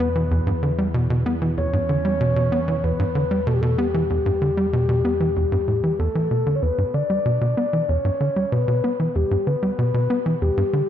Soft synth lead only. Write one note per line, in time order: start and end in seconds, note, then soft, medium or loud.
0.00 1.22 B4 medium
1.58 2.86 C#5 loud
2.84 3.49 B4 loud
3.47 3.55 A4 medium
3.54 3.62 G4 medium
3.61 3.80 A4 medium
3.78 5.99 G4 medium
5.99 6.57 A4 medium
6.55 6.64 C#5 medium
6.62 6.96 B4 loud
6.94 7.90 D5 loud
7.89 8.54 C#5 loud
8.52 9.17 B4 loud
9.16 9.48 G4 loud
9.47 10.43 B4 loud
10.42 10.89 G4 loud